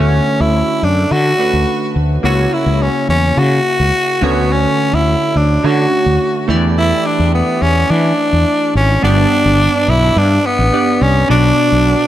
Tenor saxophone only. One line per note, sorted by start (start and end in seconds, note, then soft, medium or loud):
0.00 0.42 C#4 medium
0.41 0.85 E4 medium
0.83 1.13 D4 medium
1.12 1.96 F#4 loud
2.25 2.55 F#4 loud
2.54 2.83 E4 medium
2.82 3.09 C#4 medium
3.10 3.40 C#4 loud
3.38 4.25 F#4 loud
4.23 4.53 B3 medium
4.52 4.96 C#4 loud
4.94 5.38 E4 medium
5.36 5.67 D4 medium
5.65 6.49 F#4 loud
6.78 7.08 E4 loud
7.06 7.34 D4 loud
7.34 7.64 B3 medium
7.62 7.92 C#4 medium
7.91 8.75 D4 loud
8.76 9.02 C#4 medium
9.04 9.91 D4 loud
9.89 10.19 E4 loud
10.18 10.47 D4 loud
10.46 11.04 B3 medium
11.02 11.30 C#4 medium
11.31 12.07 D4 loud